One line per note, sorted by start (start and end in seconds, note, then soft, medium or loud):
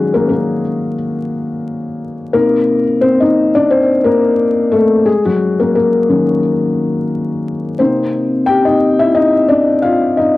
0.00 0.60 D#3 soft
0.00 2.36 F#3 medium
0.00 2.36 G#3 medium
0.00 0.60 C#4 medium
0.00 0.12 F#4 medium
0.00 2.36 G#4 medium
0.14 0.29 A#3 medium
0.14 0.27 A#4 medium
0.29 0.94 A#3 medium
0.29 0.93 A#4 medium
2.33 2.81 C3 soft
2.33 2.99 A#3 medium
2.33 2.81 D#4 medium
2.33 2.98 A#4 loud
3.01 3.20 C4 medium
3.01 3.21 C5 medium
3.20 3.53 D#4 medium
3.20 3.56 D#5 medium
3.55 3.70 D4 medium
3.55 3.71 D5 medium
3.70 3.79 C4 medium
3.70 3.78 C5 loud
4.04 4.69 A#3 medium
4.04 4.75 A#4 medium
4.72 5.04 A3 medium
4.72 5.07 A4 medium
5.06 5.24 G#3 medium
5.06 5.24 G#4 medium
5.25 5.58 F#3 medium
5.25 5.57 F#4 medium
5.60 5.74 A#3 medium
5.60 5.74 A#4 medium
5.75 6.40 A#3 medium
5.75 6.39 A#4 medium
6.09 7.76 D#3 soft
6.09 7.76 F#3 soft
6.09 7.76 C#4 medium
7.79 10.37 C3 medium
7.79 10.37 A#3 soft
7.79 8.44 C4 medium
7.79 8.65 D#4 medium
7.79 8.49 C5 medium
8.46 8.66 G4 medium
8.46 8.64 G5 loud
8.65 8.75 D#4 medium
8.65 8.73 D#5 medium
8.99 9.15 E4 medium
8.99 9.16 E5 medium
9.15 9.48 D#4 medium
9.15 9.47 D#5 medium
9.49 9.82 D4 medium
9.49 9.81 D5 medium
9.82 10.16 F4 medium
9.82 10.18 F5 medium
10.17 10.37 D#4 medium
10.17 10.37 D#5 medium